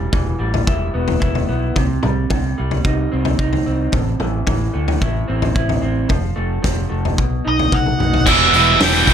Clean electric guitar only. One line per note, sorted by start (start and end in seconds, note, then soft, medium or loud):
0.00 0.12 E3 medium
0.00 0.38 G3 medium
0.13 1.49 E3 medium
0.39 1.76 G3 medium
0.67 1.19 E4 medium
0.94 1.47 B3 medium
1.20 1.76 E4 medium
1.49 1.76 B3 medium
1.76 2.29 C3 medium
2.04 2.57 G3 medium
2.31 3.67 C3 medium
2.58 3.94 G3 medium
2.85 3.38 D#4 medium
3.12 3.66 C4 medium
3.39 3.93 D#4 medium
3.66 5.27 C4 medium
3.94 5.29 A2 medium
4.21 4.46 E3 medium
4.47 5.83 E3 medium
4.74 6.10 A3 medium
5.02 5.54 E4 medium
5.28 5.80 C4 medium
5.55 6.10 E4 medium
5.82 6.10 C4 medium
6.09 6.61 F3 medium
6.36 6.88 A3 medium
6.62 7.18 F3 medium
6.90 7.18 A3 medium
7.17 8.26 B2 medium
7.45 7.98 D#4 medium
7.72 8.26 F#4 medium
7.99 8.26 D#4 medium